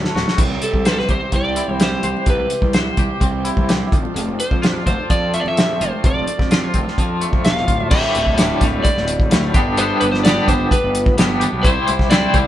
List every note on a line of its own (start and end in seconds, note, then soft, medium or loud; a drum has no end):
0.00 0.38 A2 medium
0.00 0.39 D3 medium
0.00 0.34 F#3 medium
0.00 0.34 A3 medium
0.00 0.39 A3 medium
0.00 0.36 E4 medium
0.00 0.14 F#4 medium
0.00 0.33 A4 medium
0.04 snare medium
0.15 0.24 D1 medium
0.15 0.38 F#4 medium
0.15 snare medium
0.28 snare medium
0.36 0.57 C2 medium
0.36 1.56 C3 medium
0.36 3.88 E3 medium
0.36 3.88 G3 medium
0.36 7.87 C4 medium
0.36 3.88 G4 medium
0.36 kick loud
0.36 closed hi-hat medium
0.36 crash medium
0.51 high conga medium
0.62 0.87 A4 medium
0.62 closed hi-hat medium
0.73 1.01 C2 medium
0.73 kick medium
0.73 high conga medium
0.85 0.93 B4 medium
0.85 2.03 C5 medium
0.85 snare loud
0.85 closed hi-hat medium
0.92 0.97 A4 medium
0.98 1.10 B4 medium
0.98 snare soft
1.09 1.18 C2 medium
1.09 1.80 G4 medium
1.09 1.34 C5 medium
1.09 kick medium
1.09 closed hi-hat medium
1.09 low conga medium
1.32 1.60 C2 medium
1.32 3.21 C4 medium
1.32 1.83 D5 loud
1.32 kick medium
1.32 closed hi-hat medium
1.56 2.75 E4 medium
1.56 closed hi-hat medium
1.68 1.95 C2 medium
1.68 high conga medium
1.68 low conga medium
1.80 2.98 G4 medium
1.80 2.25 C5 loud
1.80 snare loud
1.80 closed hi-hat medium
2.03 2.12 C2 medium
2.03 2.74 C5 medium
2.03 closed hi-hat medium
2.03 low conga medium
2.17 high conga medium
2.26 2.45 C2 medium
2.26 3.45 C3 medium
2.26 2.72 B4 medium
2.26 kick medium
2.26 closed hi-hat medium
2.40 high conga medium
2.50 closed hi-hat medium
2.62 2.89 C2 medium
2.62 kick medium
2.62 high conga medium
2.73 4.62 C5 medium
2.73 snare loud
2.73 closed hi-hat medium
2.97 3.07 C2 medium
2.97 3.67 G4 medium
2.97 kick medium
2.97 closed hi-hat medium
2.97 low conga medium
3.21 3.48 C2 medium
3.21 4.86 C4 medium
3.21 kick medium
3.21 closed hi-hat medium
3.45 3.92 E4 medium
3.45 closed hi-hat medium
3.57 3.84 C2 medium
3.57 kick medium
3.57 high conga medium
3.57 low conga medium
3.69 3.92 G4 medium
3.69 snare loud
3.69 closed hi-hat medium
3.92 4.01 F1 medium
3.92 4.15 F2 medium
3.92 7.88 F3 medium
3.92 7.89 D4 medium
3.92 7.89 A4 medium
3.92 kick loud
3.92 closed hi-hat medium
3.92 low conga medium
4.05 high conga medium
4.15 4.34 F1 loud
4.15 5.33 F2 medium
4.15 closed hi-hat medium
4.28 high conga medium
4.40 4.84 C5 medium
4.40 closed hi-hat medium
4.51 4.79 F2 medium
4.51 kick medium
4.51 high conga medium
4.62 5.80 F4 medium
4.62 snare loud
4.62 closed hi-hat medium
4.86 4.96 F1 medium
4.86 5.57 C4 medium
4.86 5.11 C5 medium
4.86 kick medium
4.86 closed hi-hat medium
4.86 low conga medium
5.10 5.37 F2 medium
5.10 6.28 F3 medium
5.10 5.32 D5 loud
5.10 kick medium
5.10 closed hi-hat medium
5.34 6.51 A3 medium
5.34 5.41 E5 medium
5.34 closed hi-hat medium
5.40 5.47 D5 medium
5.45 5.72 F2 medium
5.45 5.82 E5 loud
5.45 high conga medium
5.45 low conga medium
5.57 6.74 C4 medium
5.57 snare loud
5.57 closed hi-hat medium
5.81 5.90 F1 medium
5.81 6.51 F4 medium
5.81 6.03 C5 medium
5.81 closed hi-hat medium
5.81 low conga medium
5.93 high conga medium
6.04 6.22 F1 medium
6.04 7.22 F2 medium
6.04 6.69 D5 medium
6.04 kick loud
6.04 closed hi-hat medium
6.16 high conga medium
6.27 closed hi-hat medium
6.39 6.66 F2 medium
6.39 kick medium
6.39 snare soft
6.39 high conga medium
6.51 7.66 F4 medium
6.51 snare loud
6.51 closed hi-hat medium
6.69 6.95 C5 medium
6.74 6.84 F1 medium
6.74 7.43 C4 medium
6.74 kick medium
6.74 closed hi-hat medium
6.74 high conga medium
6.74 low conga medium
6.88 snare soft
6.98 7.25 F2 medium
6.98 7.92 F3 medium
6.98 kick medium
6.98 closed hi-hat medium
7.21 7.92 A3 medium
7.21 closed hi-hat medium
7.33 7.42 F2 medium
7.33 kick medium
7.33 high conga medium
7.33 low conga medium
7.44 7.66 E1 medium
7.44 7.92 C4 medium
7.44 7.90 F5 loud
7.44 snare loud
7.44 closed hi-hat medium
7.57 snare soft
7.68 7.89 D1 medium
7.68 7.91 F4 medium
7.68 kick medium
7.68 closed hi-hat medium
7.68 low conga medium
7.80 high conga medium
7.90 8.00 D1 medium
7.90 8.35 D2 medium
7.90 8.15 A2 medium
7.90 8.14 D3 loud
7.90 8.13 G3 loud
7.90 8.88 E5 loud
7.90 kick loud
7.90 crash loud
8.13 8.52 D1 medium
8.13 8.37 A2 soft
8.13 8.38 D3 medium
8.13 8.39 G3 medium
8.13 closed hi-hat medium
8.26 kick medium
8.37 8.84 D2 medium
8.37 8.62 A2 loud
8.37 8.61 D3 loud
8.37 8.59 G3 loud
8.37 snare loud
8.37 closed hi-hat loud
8.60 8.80 D1 medium
8.60 9.30 A2 medium
8.60 9.31 D3 medium
8.60 9.33 G3 medium
8.60 kick medium
8.60 snare soft
8.60 closed hi-hat medium
8.60 high conga medium
8.60 low conga medium
8.74 high conga medium
8.84 9.74 D5 loud
8.84 kick medium
8.84 closed hi-hat medium
8.84 high conga medium
8.97 9.24 D1 medium
8.97 snare soft
9.08 closed hi-hat medium
9.20 kick medium
9.20 high conga medium
9.31 9.53 D2 medium
9.31 9.50 D2 loud
9.31 9.54 A2 medium
9.31 9.54 D3 medium
9.31 9.55 G3 medium
9.31 snare loud
9.31 closed hi-hat loud
9.54 9.91 G1 medium
9.54 9.75 G2 medium
9.54 9.76 D3 medium
9.54 9.78 G3 medium
9.54 9.78 B3 medium
9.54 9.79 D4 medium
9.54 9.80 G4 medium
9.54 kick loud
9.54 closed hi-hat medium
9.54 low conga medium
9.77 10.23 G2 medium
9.77 10.24 D3 medium
9.77 10.04 G3 medium
9.77 10.02 B3 loud
9.77 10.01 D4 loud
9.77 10.00 G4 medium
9.77 10.00 C5 medium
9.77 closed hi-hat medium
10.00 10.38 G1 medium
10.00 10.25 G3 medium
10.00 10.26 B3 medium
10.00 10.26 D4 medium
10.00 10.27 G4 medium
10.00 10.12 B4 medium
10.00 closed hi-hat medium
10.12 10.17 C5 medium
10.12 snare soft
10.24 10.71 G2 medium
10.24 10.72 D3 loud
10.24 10.51 G3 medium
10.24 10.49 B3 loud
10.24 10.48 D4 loud
10.24 10.48 D5 medium
10.24 snare loud
10.24 closed hi-hat medium
10.28 10.47 G4 loud
10.48 10.66 G1 medium
10.48 11.17 G3 medium
10.48 11.18 B3 medium
10.48 11.18 D4 medium
10.48 11.20 G4 medium
10.48 10.72 C5 medium
10.48 kick medium
10.48 closed hi-hat medium
10.48 high conga medium
10.48 low conga medium
10.60 high conga medium
10.71 11.15 B4 medium
10.71 kick medium
10.71 closed hi-hat medium
10.71 high conga medium
10.84 11.11 G1 medium
10.95 closed hi-hat medium
11.06 kick medium
11.06 high conga medium
11.18 11.45 G1 loud
11.18 11.43 G3 medium
11.18 11.41 B3 medium
11.18 11.40 D4 medium
11.18 11.40 G4 medium
11.18 snare loud
11.18 closed hi-hat loud
11.40 11.64 G3 medium
11.40 11.64 B3 medium
11.40 11.63 D4 medium
11.40 11.66 G4 medium
11.40 closed hi-hat medium
11.40 low conga medium
11.53 11.62 B1 medium
11.63 11.73 C2 medium
11.63 12.10 C3 medium
11.63 12.10 G3 loud
11.63 11.90 C4 loud
11.63 11.89 E4 medium
11.63 11.88 G4 loud
11.63 12.10 C5 medium
11.63 11.86 C5 medium
11.63 kick loud
11.63 closed hi-hat medium
11.86 12.25 C2 medium
11.86 12.11 C4 soft
11.86 12.12 E4 medium
11.86 12.13 G4 medium
11.86 12.13 C5 medium
11.86 closed hi-hat medium
11.99 kick medium
11.99 snare soft
12.10 12.47 C3 medium
12.10 12.47 G3 loud
12.10 12.37 C4 loud
12.10 12.36 E4 loud
12.10 12.35 G4 loud
12.10 12.34 C5 loud
12.10 12.47 D5 medium
12.10 snare loud
12.10 closed hi-hat loud
12.34 12.47 C2 loud
12.34 12.47 C4 medium
12.34 12.47 E4 medium
12.34 12.47 G4 medium
12.34 12.47 C5 medium
12.34 kick medium
12.34 closed hi-hat medium
12.34 high conga medium
12.34 low conga medium